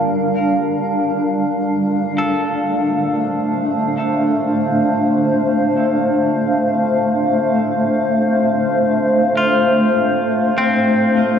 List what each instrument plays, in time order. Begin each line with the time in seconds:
Already playing: ambient pad G3 D4 A#4 F5, clean electric guitar A#4
1.58 ambient pad A3
2.18 clean electric guitar A4
2.68 ambient pad C5
9.37 clean electric guitar F4
10.58 clean electric guitar C4